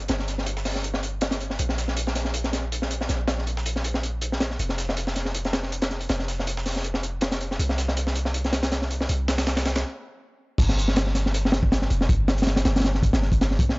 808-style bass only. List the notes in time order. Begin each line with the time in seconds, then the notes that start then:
0.09 G1
1.59 A#1
3.09 A#1
4.59 F1
6.10 F1
7.59 C2
9.09 C2
10.58 G1
11.91 F1
12.09 G1
12.65 G1
13.13 G1